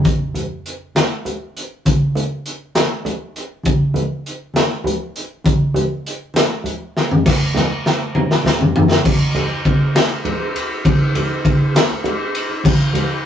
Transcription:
0.04 kick, closed hi-hat, high conga
0.34 closed hi-hat, low conga
0.66 closed hi-hat
0.95 snare, closed hi-hat, high conga
1.25 closed hi-hat, low conga
1.55 closed hi-hat, low conga
1.85 kick, closed hi-hat, high conga
2.15 closed hi-hat, low conga
2.46 closed hi-hat
2.75 snare, closed hi-hat, high conga
3.05 closed hi-hat, low conga
3.35 closed hi-hat, low conga
3.63 kick, closed hi-hat, high conga
3.94 closed hi-hat, low conga
4.26 closed hi-hat
4.54 snare, closed hi-hat, high conga
4.84 closed hi-hat, low conga
5.15 closed hi-hat, low conga
5.44 kick, closed hi-hat, high conga
5.74 closed hi-hat, low conga
6.04 closed hi-hat, low conga
6.34 snare, closed hi-hat, high conga, low conga
6.64 closed hi-hat, low conga
6.97 snare
7.11 floor tom
7.24 kick, snare, crash, high conga
7.54 snare, low conga
7.70 low conga
7.86 snare
8.15 mid tom, high conga
8.31 snare
8.44 snare, low conga
8.61 floor tom
8.76 floor tom
8.91 snare
9.04 kick, crash, high conga
9.35 ride, low conga
9.65 kick, ride, low conga
9.95 snare, ride, high conga
10.11 low conga
10.25 ride, low conga
10.56 ride, low conga
10.71 low conga
10.85 kick, ride, high conga
11.15 ride, low conga
11.45 kick, ride
11.75 snare, ride, high conga
11.90 low conga
12.04 ride, low conga
12.35 ride, low conga
12.50 low conga
12.64 kick, crash, high conga
12.93 ride, low conga

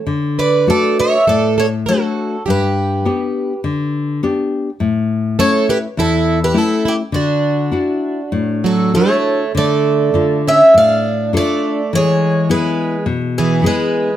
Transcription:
0.07 D3
0.39 B4 D5
0.67 A3 D4 F#4 A4 D5
1.00 C#5 E5
1.27 A2 A4 D5
1.58 A4 C#5
1.86 A3 D4 F#4 A4
2.46 G2 G4
2.50 B4
3.05 B3 D4 G4
3.64 D3
4.23 B3 D4 G4
4.80 A2
5.39 A3 C#4 E4 A4 C#5
5.69 G4 B4
5.97 E2 E4 A4
6.44 G4 B4
6.54 A3 C#4 E4
6.58 A4
6.85 E4 G4
7.12 D3 D4 F#4
7.71 D4 E4 F#4
8.32 A2
8.64 F#3 A4
8.94 A3 D4 E4 F#4 C#5
9.55 D3 A3 D5
10.14 D3 F4 A4
10.48 C#4 E5
10.74 A2 D4 F5
11.33 D4 F4 A4 D5
11.38 A3
11.93 E3 C#5
11.97 G#3
12.49 B3 E4 G#4 B4
12.54 G#3
13.06 B2
13.38 E3 G#4
13.62 B3 E4 G#4
13.66 G#3 B4

